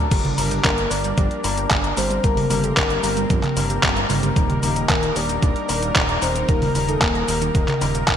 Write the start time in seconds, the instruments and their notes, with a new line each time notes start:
Already playing: analog synth pad F#3 D4, clean electric guitar G3 A#3 D4 A#4
0.11 analog synth bass G1, synth arpeggio sound G3, analog synth pad G3 A#3 D4 A#4, kick, closed hi-hat, crash, cabasa
0.25 closed hi-hat, high conga
0.37 analog synth bass G1, synth arpeggio sound G2, clean electric guitar G3 A#3 D4 A#4, open hi-hat, cabasa
0.51 synth arpeggio sound G4, closed hi-hat, cabasa
0.65 analog synth bass G1, synth arpeggio sound D4, soft synth lead A#4, kick, clap, closed hi-hat, cabasa
0.78 closed hi-hat
0.91 analog synth bass G1, synth arpeggio sound G3, clean electric guitar G3 A#3 D4 A#4, soft synth lead D5, open hi-hat, cabasa
1.04 synth arpeggio sound G3, closed hi-hat, cabasa
1.18 analog synth bass G1, synth arpeggio sound F3, soft synth lead D5, kick, closed hi-hat, cabasa
1.31 closed hi-hat
1.44 analog synth bass G1, synth arpeggio sound G2, clean electric guitar G3 A#3 D4 A#4, open hi-hat, cabasa
1.57 synth arpeggio sound G4, closed hi-hat, cabasa
1.71 analog synth bass G1, synth arpeggio sound G3, kick, clap, closed hi-hat, cabasa
1.83 clean electric guitar G3 A#3 D4 A#4, closed hi-hat
1.97 analog synth bass G1, synth arpeggio sound G3, clean electric guitar G3 A#3 D4 A#4, soft synth lead C5, open hi-hat, cabasa
2.11 synth arpeggio sound G3, closed hi-hat, cabasa
2.24 analog synth bass G1, synth arpeggio sound G3, analog synth pad C4, soft synth lead A#4, kick, closed hi-hat, cabasa
2.37 open hi-hat, high conga
2.50 analog synth bass G1, synth arpeggio sound G2, clean electric guitar G3 A#3 D4 A#4, open hi-hat, high conga, cabasa
2.64 synth arpeggio sound G4, soft synth lead A4, closed hi-hat, cabasa
2.77 analog synth bass G1, synth arpeggio sound D4, soft synth lead A#4, kick, clap, closed hi-hat, cabasa
2.90 closed hi-hat
3.03 analog synth bass G1, synth arpeggio sound G3, clean electric guitar G3 A#3 D4 A#4, open hi-hat, cabasa
3.17 synth arpeggio sound G3, closed hi-hat, cabasa
3.30 analog synth bass G1, synth arpeggio sound F3, kick, closed hi-hat, cabasa
3.43 clap, closed hi-hat, high conga
3.56 analog synth bass G1, synth arpeggio sound G2, clean electric guitar G3 A#3 D4 A#4, open hi-hat, cabasa
3.70 synth arpeggio sound G4, closed hi-hat, cabasa
3.83 analog synth bass G1, synth arpeggio sound G3, kick, clap, closed hi-hat, cabasa
3.96 clean electric guitar G3 A#3 D4 A#4, closed hi-hat
4.09 analog synth bass G1, synth arpeggio sound G3, clean electric guitar G3 A#3 D#4 A#4, open hi-hat, high conga, cabasa
4.23 synth arpeggio sound G3, closed hi-hat, cabasa
4.36 analog synth bass D#1, synth arpeggio sound D#3, analog synth pad D#4, kick, closed hi-hat, cabasa
4.50 closed hi-hat, high conga
4.62 analog synth bass D#1, synth arpeggio sound D#2, clean electric guitar G3 A#3 D#4 A#4, open hi-hat, cabasa
4.76 synth arpeggio sound D#4, closed hi-hat, cabasa
4.89 analog synth bass D#1, synth arpeggio sound A#3, soft synth lead A#4, kick, clap, closed hi-hat, cabasa
5.03 closed hi-hat
5.15 analog synth bass D#1, synth arpeggio sound D#3, clean electric guitar G3 A#3 D#4 A#4, soft synth lead D5, open hi-hat, cabasa
5.29 synth arpeggio sound D#3, closed hi-hat, cabasa
5.42 analog synth bass D#1, synth arpeggio sound D3, soft synth lead D5, kick, closed hi-hat, cabasa
5.56 closed hi-hat
5.68 analog synth bass D#1, synth arpeggio sound D#2, clean electric guitar G3 A#3 D#4 A#4, open hi-hat, cabasa
5.82 synth arpeggio sound D#4, closed hi-hat, cabasa
5.96 analog synth bass D#1, synth arpeggio sound D#3, kick, clap, closed hi-hat, cabasa
6.09 clean electric guitar G3 A#3 D#4 A#4, closed hi-hat
6.22 analog synth bass D#1, synth arpeggio sound D#3, clean electric guitar G3 A#3 D#4 A#4, soft synth lead C5, open hi-hat, cabasa
6.36 synth arpeggio sound D#3, closed hi-hat, cabasa
6.49 analog synth bass D#1, synth arpeggio sound D#3, soft synth lead A#4, kick, closed hi-hat, cabasa
6.62 open hi-hat, high conga
6.75 analog synth bass D#1, synth arpeggio sound D#2, clean electric guitar G3 A#3 D#4 A#4, open hi-hat, high conga, cabasa
6.89 synth arpeggio sound D#4, soft synth lead A4, closed hi-hat, cabasa
7.02 analog synth bass D#1, synth arpeggio sound A#3, soft synth lead A#4, kick, clap, closed hi-hat, cabasa
7.15 closed hi-hat
7.28 analog synth bass D#1, synth arpeggio sound D#3, clean electric guitar G3 A#3 D#4 A#4, open hi-hat, cabasa
7.42 synth arpeggio sound D#3, closed hi-hat, cabasa
7.55 analog synth bass D#1, synth arpeggio sound D3, kick, closed hi-hat, cabasa
7.68 clap, closed hi-hat, high conga
7.81 analog synth bass D#1, synth arpeggio sound D#3, clean electric guitar G3 A#3 D#4 A#4, open hi-hat, cabasa
7.95 synth arpeggio sound A#2, closed hi-hat, cabasa
8.08 analog synth bass D#1, synth arpeggio sound A#2, kick, clap, closed hi-hat, cabasa